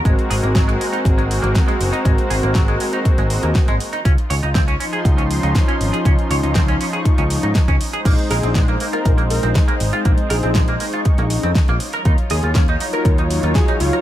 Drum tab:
CC |----------------|----------------|----------------|----------------|
HH |xxoxxxoxxxoxxxox|xxoxxxoxxxoxxxox|xxoxxxoxxxoxxxox|xxoxxxoxxxoxxxox|
SD |----o-------o---|----o-------o---|----o-------o---|----o-------o---|
BD |o---o---o---o---|o---o---o---o---|o---o---o---o---|o---o---o---oo--|

CC |x---------------|----------------|----------------|
HH |xxoxxxoxxxoxxxox|xxoxxxoxxxoxxxox|xxoxxxoxxxoxxxox|
SD |----o-------o---|----o-------o---|----o-------o---|
BD |o---o---o---o---|o---o---o---o---|o---o---o---o---|